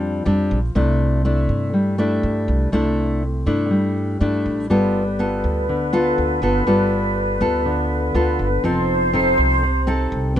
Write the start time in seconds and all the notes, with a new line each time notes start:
Already playing: F2 F3 G3 C4 D4
0.26 F2 G3 C4 D4
0.51 A#1
0.75 C2 C3 A3 D4 E4
1.25 A3 D4 E4
1.49 G2
1.74 G3
1.98 A3 D4 E4
2.23 G2
2.48 C2
2.72 C2 C3 A3 D4 E4
3.46 G2 A3 D4 E4
3.71 G3
4.21 G2 A3 D4 E4
4.46 A1
4.70 G1 G3 B3 F4 A4 B4
5.19 B3 F4 A4
5.44 D2
5.69 D3
5.93 B3 F4 A4
6.18 D2
6.42 G1 B3 F4 A4
6.67 G1 G3 B3 F4 A4
7.41 D2 B3 F4 A4
7.65 D3
8.15 D2 B3 F4 A4
8.39 G1
8.64 F1 F3 C4 D#4 A4 C5
9.13 C4 D#4 A4
9.38 C2
9.63 C3
9.87 C4 D#4 A4
10.12 C2
10.36 F1 E3